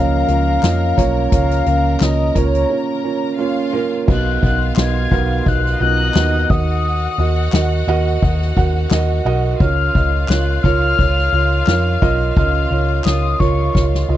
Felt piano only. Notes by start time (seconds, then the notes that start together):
Already playing: C#3 F3 A#3 C#4 F4 C#5 D#5
0.28 A#3 C#4 F4 C#5
0.63 A#3 C#4 F4 D#5
0.97 A#3 C#4 F4 C#5
1.32 C#3 A#3 C#4 F4 C#5
1.66 A#3 C#4 F4 C#5
2.01 A#3 C#4 F4 C#5
2.35 A#3 C#4 F4 A#4
2.70 A#3 C#4 F4 C#5
3.04 A#3 C#4 F4 C#5
3.38 A#3 C#4 F4 C#5
3.73 A#3 C#4 F4 A#4
4.07 B2 B3 D#4 F#4 A#4 D#5
4.42 B3 D#4 F#4 A#4 D#5
4.77 B3 D#4 F#4 A#4 D#5
5.11 B3 D#4 F#4 A#4 F5
5.46 B3 D#4 F#4 A#4 D#5
5.81 B3 D#4 F4 F#4 A#4
6.15 B3 D#4 F#4 A#4 D#5
6.50 D#3 F#4 A#4 D#5
7.19 F#4 A#4 D#5
7.54 F#4 A#4 D#5
7.88 F#4 A#4 D#5
8.22 F#4 A#4 D#5
8.57 F#4 A#4 F#5
8.92 F#4 A#4 D#5
9.26 F#4 A#4 D#5
9.60 C#3 F4 A#4 C#5
9.95 F4 A#4 D#5
10.30 F4 A#4 C#5
10.65 F4 A#4 C#5
10.99 F4 A#4 C#5
11.33 F4 A#4 C#5
11.68 F4 A#4 C#5
12.02 F4 A#4 D#5
12.37 C#3 F4 A#4 D#5
12.72 F4 A#4 C#5
13.06 F4 A#4 C#5
13.40 F4 A#4 C#5
13.75 F4 A#4 C#5
14.09 F4 A#4 D#5